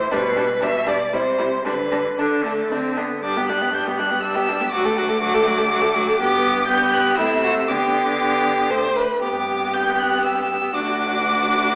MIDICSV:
0, 0, Header, 1, 5, 480
1, 0, Start_track
1, 0, Key_signature, 1, "major"
1, 0, Tempo, 503778
1, 123, Time_signature, 3, 2, 24, 8
1, 1085, Tempo, 520833
1, 3485, Tempo, 489796
1, 6365, Tempo, 508906
1, 9245, Tempo, 496278
1, 11195, End_track
2, 0, Start_track
2, 0, Title_t, "Violin"
2, 0, Program_c, 0, 40
2, 0, Note_on_c, 0, 72, 106
2, 104, Note_off_c, 0, 72, 0
2, 121, Note_on_c, 0, 71, 92
2, 597, Note_on_c, 0, 76, 91
2, 611, Note_off_c, 0, 71, 0
2, 844, Note_on_c, 0, 74, 78
2, 858, Note_off_c, 0, 76, 0
2, 1082, Note_on_c, 0, 72, 87
2, 1095, Note_off_c, 0, 74, 0
2, 1558, Note_off_c, 0, 72, 0
2, 1564, Note_on_c, 0, 71, 83
2, 2057, Note_on_c, 0, 69, 65
2, 2071, Note_off_c, 0, 71, 0
2, 2777, Note_off_c, 0, 69, 0
2, 3018, Note_on_c, 0, 86, 84
2, 3237, Note_off_c, 0, 86, 0
2, 3249, Note_on_c, 0, 90, 85
2, 3479, Note_off_c, 0, 90, 0
2, 3484, Note_on_c, 0, 91, 84
2, 3562, Note_off_c, 0, 91, 0
2, 3725, Note_on_c, 0, 90, 90
2, 3959, Note_off_c, 0, 90, 0
2, 3965, Note_on_c, 0, 88, 98
2, 4431, Note_off_c, 0, 88, 0
2, 4437, Note_on_c, 0, 86, 103
2, 5848, Note_off_c, 0, 86, 0
2, 5882, Note_on_c, 0, 86, 107
2, 6349, Note_off_c, 0, 86, 0
2, 6355, Note_on_c, 0, 91, 107
2, 6603, Note_on_c, 0, 90, 106
2, 6617, Note_off_c, 0, 91, 0
2, 6822, Note_off_c, 0, 90, 0
2, 6827, Note_on_c, 0, 88, 102
2, 7313, Note_on_c, 0, 86, 89
2, 7327, Note_off_c, 0, 88, 0
2, 8526, Note_off_c, 0, 86, 0
2, 8769, Note_on_c, 0, 86, 89
2, 9247, Note_on_c, 0, 91, 90
2, 9262, Note_off_c, 0, 86, 0
2, 9497, Note_on_c, 0, 90, 96
2, 9512, Note_off_c, 0, 91, 0
2, 9734, Note_off_c, 0, 90, 0
2, 9744, Note_on_c, 0, 88, 95
2, 10223, Note_on_c, 0, 86, 109
2, 10238, Note_off_c, 0, 88, 0
2, 11195, Note_off_c, 0, 86, 0
2, 11195, End_track
3, 0, Start_track
3, 0, Title_t, "Violin"
3, 0, Program_c, 1, 40
3, 111, Note_on_c, 1, 62, 65
3, 187, Note_off_c, 1, 62, 0
3, 348, Note_on_c, 1, 62, 60
3, 424, Note_off_c, 1, 62, 0
3, 581, Note_on_c, 1, 62, 58
3, 657, Note_off_c, 1, 62, 0
3, 825, Note_on_c, 1, 62, 53
3, 901, Note_off_c, 1, 62, 0
3, 1078, Note_on_c, 1, 64, 53
3, 1152, Note_off_c, 1, 64, 0
3, 1312, Note_on_c, 1, 64, 55
3, 1386, Note_off_c, 1, 64, 0
3, 1558, Note_on_c, 1, 62, 60
3, 1631, Note_off_c, 1, 62, 0
3, 1803, Note_on_c, 1, 62, 52
3, 1877, Note_off_c, 1, 62, 0
3, 2048, Note_on_c, 1, 62, 51
3, 2122, Note_off_c, 1, 62, 0
3, 2300, Note_on_c, 1, 62, 49
3, 2374, Note_off_c, 1, 62, 0
3, 2536, Note_on_c, 1, 62, 52
3, 2609, Note_off_c, 1, 62, 0
3, 2772, Note_on_c, 1, 62, 48
3, 2846, Note_off_c, 1, 62, 0
3, 3018, Note_on_c, 1, 62, 62
3, 3140, Note_on_c, 1, 67, 55
3, 3154, Note_off_c, 1, 62, 0
3, 3258, Note_on_c, 1, 62, 56
3, 3272, Note_off_c, 1, 67, 0
3, 3368, Note_on_c, 1, 67, 53
3, 3381, Note_off_c, 1, 62, 0
3, 3473, Note_off_c, 1, 67, 0
3, 3478, Note_on_c, 1, 62, 60
3, 3607, Note_on_c, 1, 67, 58
3, 3622, Note_off_c, 1, 62, 0
3, 3727, Note_on_c, 1, 62, 56
3, 3742, Note_off_c, 1, 67, 0
3, 3842, Note_on_c, 1, 67, 57
3, 3857, Note_off_c, 1, 62, 0
3, 3965, Note_off_c, 1, 67, 0
3, 3970, Note_on_c, 1, 62, 58
3, 4084, Note_on_c, 1, 67, 58
3, 4099, Note_off_c, 1, 62, 0
3, 4216, Note_on_c, 1, 62, 63
3, 4231, Note_off_c, 1, 67, 0
3, 4331, Note_on_c, 1, 67, 58
3, 4345, Note_off_c, 1, 62, 0
3, 4445, Note_off_c, 1, 67, 0
3, 4451, Note_on_c, 1, 66, 70
3, 4573, Note_on_c, 1, 69, 64
3, 4588, Note_off_c, 1, 66, 0
3, 4694, Note_on_c, 1, 66, 64
3, 4709, Note_off_c, 1, 69, 0
3, 4802, Note_on_c, 1, 69, 62
3, 4817, Note_off_c, 1, 66, 0
3, 4917, Note_off_c, 1, 69, 0
3, 4923, Note_on_c, 1, 66, 68
3, 5053, Note_on_c, 1, 69, 65
3, 5068, Note_off_c, 1, 66, 0
3, 5169, Note_on_c, 1, 66, 67
3, 5184, Note_off_c, 1, 69, 0
3, 5289, Note_on_c, 1, 69, 63
3, 5303, Note_off_c, 1, 66, 0
3, 5400, Note_off_c, 1, 69, 0
3, 5406, Note_on_c, 1, 66, 69
3, 5518, Note_on_c, 1, 69, 64
3, 5532, Note_off_c, 1, 66, 0
3, 5646, Note_on_c, 1, 66, 76
3, 5661, Note_off_c, 1, 69, 0
3, 5769, Note_on_c, 1, 69, 65
3, 5784, Note_off_c, 1, 66, 0
3, 5880, Note_off_c, 1, 69, 0
3, 5886, Note_on_c, 1, 67, 80
3, 6333, Note_off_c, 1, 67, 0
3, 6361, Note_on_c, 1, 67, 78
3, 6828, Note_on_c, 1, 64, 69
3, 6842, Note_off_c, 1, 67, 0
3, 7071, Note_off_c, 1, 64, 0
3, 7079, Note_on_c, 1, 66, 66
3, 7154, Note_off_c, 1, 66, 0
3, 7315, Note_on_c, 1, 67, 71
3, 7744, Note_off_c, 1, 67, 0
3, 7798, Note_on_c, 1, 67, 78
3, 8276, Note_on_c, 1, 72, 81
3, 8290, Note_off_c, 1, 67, 0
3, 8517, Note_on_c, 1, 71, 69
3, 8531, Note_off_c, 1, 72, 0
3, 8754, Note_off_c, 1, 71, 0
3, 8760, Note_on_c, 1, 67, 70
3, 10170, Note_off_c, 1, 67, 0
3, 10218, Note_on_c, 1, 66, 73
3, 11195, Note_off_c, 1, 66, 0
3, 11195, End_track
4, 0, Start_track
4, 0, Title_t, "Viola"
4, 0, Program_c, 2, 41
4, 120, Note_on_c, 2, 55, 69
4, 196, Note_off_c, 2, 55, 0
4, 356, Note_on_c, 2, 55, 58
4, 432, Note_off_c, 2, 55, 0
4, 587, Note_on_c, 2, 55, 59
4, 663, Note_off_c, 2, 55, 0
4, 826, Note_on_c, 2, 55, 55
4, 903, Note_off_c, 2, 55, 0
4, 1071, Note_on_c, 2, 55, 54
4, 1145, Note_off_c, 2, 55, 0
4, 1309, Note_on_c, 2, 55, 57
4, 1383, Note_off_c, 2, 55, 0
4, 1557, Note_on_c, 2, 55, 57
4, 1631, Note_off_c, 2, 55, 0
4, 1794, Note_on_c, 2, 55, 49
4, 1868, Note_off_c, 2, 55, 0
4, 2045, Note_on_c, 2, 62, 66
4, 2291, Note_on_c, 2, 57, 61
4, 2305, Note_off_c, 2, 62, 0
4, 2530, Note_on_c, 2, 60, 70
4, 2544, Note_off_c, 2, 57, 0
4, 2771, Note_on_c, 2, 59, 57
4, 2785, Note_off_c, 2, 60, 0
4, 3009, Note_off_c, 2, 59, 0
4, 3014, Note_on_c, 2, 55, 65
4, 3136, Note_on_c, 2, 59, 59
4, 3150, Note_off_c, 2, 55, 0
4, 3252, Note_on_c, 2, 55, 59
4, 3266, Note_off_c, 2, 59, 0
4, 3370, Note_on_c, 2, 59, 55
4, 3384, Note_off_c, 2, 55, 0
4, 3479, Note_off_c, 2, 59, 0
4, 3485, Note_on_c, 2, 55, 56
4, 3607, Note_on_c, 2, 59, 53
4, 3622, Note_off_c, 2, 55, 0
4, 3730, Note_on_c, 2, 55, 54
4, 3744, Note_off_c, 2, 59, 0
4, 3847, Note_on_c, 2, 59, 59
4, 3861, Note_off_c, 2, 55, 0
4, 3959, Note_off_c, 2, 59, 0
4, 3965, Note_on_c, 2, 55, 60
4, 4090, Note_on_c, 2, 59, 55
4, 4105, Note_off_c, 2, 55, 0
4, 4212, Note_on_c, 2, 55, 66
4, 4227, Note_off_c, 2, 59, 0
4, 4332, Note_on_c, 2, 59, 55
4, 4347, Note_off_c, 2, 55, 0
4, 4445, Note_off_c, 2, 59, 0
4, 4451, Note_on_c, 2, 54, 68
4, 4564, Note_on_c, 2, 57, 63
4, 4579, Note_off_c, 2, 54, 0
4, 4691, Note_on_c, 2, 54, 64
4, 4706, Note_off_c, 2, 57, 0
4, 4814, Note_on_c, 2, 57, 58
4, 4828, Note_off_c, 2, 54, 0
4, 4924, Note_off_c, 2, 57, 0
4, 4930, Note_on_c, 2, 54, 70
4, 5049, Note_on_c, 2, 57, 63
4, 5063, Note_off_c, 2, 54, 0
4, 5172, Note_on_c, 2, 54, 67
4, 5186, Note_off_c, 2, 57, 0
4, 5285, Note_on_c, 2, 57, 67
4, 5300, Note_off_c, 2, 54, 0
4, 5399, Note_off_c, 2, 57, 0
4, 5405, Note_on_c, 2, 54, 70
4, 5523, Note_on_c, 2, 57, 70
4, 5538, Note_off_c, 2, 54, 0
4, 5646, Note_on_c, 2, 54, 72
4, 5661, Note_off_c, 2, 57, 0
4, 5771, Note_on_c, 2, 57, 66
4, 5785, Note_off_c, 2, 54, 0
4, 5878, Note_off_c, 2, 57, 0
4, 5884, Note_on_c, 2, 59, 82
4, 6332, Note_off_c, 2, 59, 0
4, 6367, Note_on_c, 2, 59, 79
4, 6839, Note_on_c, 2, 57, 71
4, 6853, Note_off_c, 2, 59, 0
4, 7311, Note_on_c, 2, 59, 69
4, 7325, Note_off_c, 2, 57, 0
4, 8284, Note_on_c, 2, 57, 63
4, 8298, Note_off_c, 2, 59, 0
4, 8575, Note_off_c, 2, 57, 0
4, 8761, Note_on_c, 2, 59, 71
4, 10171, Note_off_c, 2, 59, 0
4, 10208, Note_on_c, 2, 62, 70
4, 11195, Note_off_c, 2, 62, 0
4, 11195, End_track
5, 0, Start_track
5, 0, Title_t, "Cello"
5, 0, Program_c, 3, 42
5, 119, Note_on_c, 3, 47, 83
5, 540, Note_off_c, 3, 47, 0
5, 599, Note_on_c, 3, 47, 70
5, 1027, Note_off_c, 3, 47, 0
5, 1082, Note_on_c, 3, 48, 67
5, 1507, Note_off_c, 3, 48, 0
5, 1563, Note_on_c, 3, 50, 67
5, 1995, Note_off_c, 3, 50, 0
5, 2048, Note_on_c, 3, 50, 60
5, 2476, Note_off_c, 3, 50, 0
5, 2536, Note_on_c, 3, 50, 59
5, 2960, Note_off_c, 3, 50, 0
5, 3014, Note_on_c, 3, 43, 71
5, 4407, Note_off_c, 3, 43, 0
5, 4447, Note_on_c, 3, 38, 83
5, 5853, Note_off_c, 3, 38, 0
5, 5884, Note_on_c, 3, 43, 91
5, 6800, Note_off_c, 3, 43, 0
5, 6841, Note_on_c, 3, 48, 81
5, 7321, Note_on_c, 3, 50, 75
5, 7335, Note_off_c, 3, 48, 0
5, 8578, Note_off_c, 3, 50, 0
5, 8768, Note_on_c, 3, 43, 73
5, 10175, Note_off_c, 3, 43, 0
5, 10214, Note_on_c, 3, 38, 81
5, 11195, Note_off_c, 3, 38, 0
5, 11195, End_track
0, 0, End_of_file